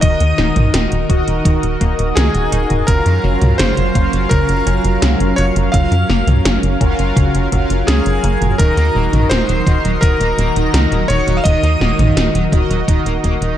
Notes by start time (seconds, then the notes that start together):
Already playing: D#3 D#4 F#4 A#4
0.01 D#1 D#3 F#4 A#4 D#5 D#6, kick, closed hi-hat
0.20 D#2, closed hi-hat
0.38 D#1 D#4, snare
0.56 A#1, closed hi-hat, mid tom
0.74 D#1 D#3, snare, closed hi-hat
0.92 D#1, closed hi-hat
1.09 D#1 F#4 A#4 D#5, kick, closed hi-hat
1.27 D#1, closed hi-hat
1.45 D#1 D#3, kick, closed hi-hat
1.63 D#1, closed hi-hat
1.81 D#1 A#3, kick, closed hi-hat
1.99 D#1, closed hi-hat
2.15 C#2 D#3 G#4 G#5, snare, closed hi-hat
2.34 D#1, closed hi-hat
2.52 D#1 D#4, closed hi-hat
2.70 D#1, closed hi-hat, mid tom
2.87 F#1 C#3 F#3 C#4 F4 F#4 A#4 F5 A#5, kick, closed hi-hat
3.06 F#2, closed hi-hat
3.24 F#1 F#3
3.42 C#2, closed hi-hat, mid tom
3.58 F#1 C#3 C5 C6, snare, closed hi-hat
3.77 F#1, closed hi-hat
3.95 F#1 A#3 C#4 F4 F#4 A#4 F5, kick, closed hi-hat
4.13 F#1, closed hi-hat
4.29 F#1 C#3 A#4 A#5, kick, closed hi-hat
4.49 F#1, closed hi-hat
4.66 F#1 C#4, closed hi-hat
4.84 F#1, closed hi-hat
5.02 C#2 C#3, snare, closed hi-hat
5.20 F#1, closed hi-hat
5.36 F#1 F#3 C#5 C#6, closed hi-hat
5.56 F#1, closed hi-hat
5.72 F#1 C#3 C#4 F4 F#4 A#4 F5 F6, kick, closed hi-hat
5.91 F#2, closed hi-hat
6.09 F#1 A#3, snare
6.27 C#2, closed hi-hat, mid tom
6.45 F#1 C#3, snare, closed hi-hat
6.63 F#1, closed hi-hat
6.81 F#1 C#4 F4 F#4 A#4 F5, kick, closed hi-hat
6.99 F#1, closed hi-hat
7.16 F#1 C#3, kick, closed hi-hat
7.34 F#1, closed hi-hat
7.52 F#1 F#3 C#4 F4 F#4 A#4 F5, kick, closed hi-hat
7.70 F#1, closed hi-hat
7.87 C#2 C#3 G#4 G#5, snare, closed hi-hat
8.06 F#1, closed hi-hat
8.24 F#1 A#3, closed hi-hat
8.41 F#1, closed hi-hat, mid tom
8.58 D#1 D#3 D#4 F#4 A#4 D#5 A#5, kick, closed hi-hat
8.77 D#2 A#3, closed hi-hat
8.95 D#1 A#3
9.13 A#1 D#3, closed hi-hat, mid tom
9.30 D#1 D#4 C5 C6, snare, closed hi-hat
9.49 D#1 F#3, closed hi-hat
9.67 D#1 D#3 F#4 A#4 D#5, kick, closed hi-hat
9.85 D#1 F#3, closed hi-hat
10.01 D#1 D#3 A#4 A#5, kick, closed hi-hat
10.20 D#1 A#3, closed hi-hat
10.38 D#1 A#3, closed hi-hat
10.56 D#1 D#3, closed hi-hat
10.74 C#2 D#4, snare, closed hi-hat
10.91 D#1 F#3, closed hi-hat
11.08 D#1 D#3 C#5 C#6, closed hi-hat
11.27 D#1 F#3, closed hi-hat
11.37 F5 F6
11.43 D#1 D#3 F#4 A#4 D#5 D#6, kick, closed hi-hat
11.63 D#2 A#3, closed hi-hat
11.81 D#1 A#3, snare
11.99 A#1 D#3, closed hi-hat, mid tom
12.16 D#1 D#4, snare, closed hi-hat
12.34 D#1 F#3, closed hi-hat
12.52 D#1 D#3 F#4 A#4 D#5, kick, closed hi-hat
12.70 D#1 F#3, closed hi-hat
12.88 D#1 D#3, kick, closed hi-hat
13.06 D#1 A#3, closed hi-hat
13.24 D#1 A#3, kick, closed hi-hat
13.41 D#1 D#3, closed hi-hat